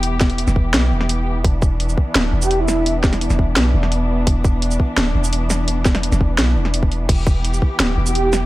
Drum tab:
CC |----------------|----------------|----------------|----------------|
HH |x--xx---x---x---|x---x---x---x---|x--xx---x---x---|x---x---x---x---|
SH |--x--x----------|--x--x-----x--x-|--x--x----------|--x--x-----x--x-|
SD |--o--o--o--o----|--------o-----o-|--oo-o--o--o----|--------o-----o-|
BD |--o---o---------|o-o---o---------|--o---o---------|o-o---o---------|

CC |----------------|x---------------|
HH |x--xx---x---x-x-|x---x---x---x---|
SH |--x--x----------|--x--x-----x--x-|
SD |--oo-o--o--o----|--------o-----o-|
BD |--o---o------o--|o-o---o---------|